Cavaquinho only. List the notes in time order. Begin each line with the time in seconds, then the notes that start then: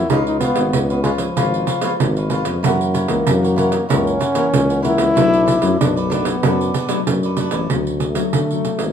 0.10 F4 B4 C#5 F5
0.41 F4 B4 C#5 F5
0.90 B4 C#5 F5
1.04 F4 B4 C#5 F5
1.19 B4 C#5 F5
1.37 F4 B4 C#5 F5
1.67 F4 B4 C#5 F5
1.82 F4 B4 C#5 F5
2.17 B4 C#5 F5
2.30 F4 B4 C#5 F5
2.45 B4 C#5 F5
2.63 E4 A#4 C#5 F#5
2.94 E4 A#4 C#5 F#5
3.43 A#4 C#5 F#5
3.56 E4 A#4 C#5 F#5
3.71 A#4 C#5 F#5
3.89 E4 A#4 C#5 F#5
4.19 E4 A#4 C#5 F#5
4.35 E4 A#4 C#5 F#5
4.69 A#4 C#5 F#5
4.83 E4 A#4 C#5 F#5
4.97 A#4 C#5 F#5
5.16 D4 A4 B4 D5
5.46 D4 A4 B4 D5
5.96 A4 B4 D5
6.10 D4 A4 B4 D5
6.27 A4 B4
6.43 D4 A4 B4 D5
6.74 D4 A4 B4 D5
6.88 D4 A4 B4 D5
7.24 A4 B4 D5
7.38 D4 A4 B4 D5
7.53 A4 B4 D5